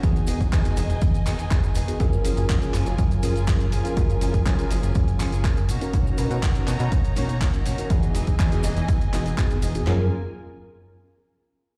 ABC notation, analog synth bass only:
X:1
M:4/4
L:1/16
Q:1/4=122
K:F#
V:1 name="Analog synth bass" clef=bass
=E,,2 =E,,, E,,, E,, z E,,, E,,, E,,2 E,,, E,, E,, z E,,, z | F,,2 F,,, F,,, F,, z F,,, F,,, F,,2 F,,,2 F,,2 F,,, z | F,,2 F,,, F,,, F,, z F,,, F,,, F,,2 F,,,2 F,,2 B,, z | B,,,2 B,, B,, B,,, z B,, B,, B,,,2 B,,2 B,,,2 B,, z |
=E,,2 =E,,, E,,, E,, z E,,, E,,, E,,2 E,,,2 E,, z E,,,2 | F,,2 z12 z2 |]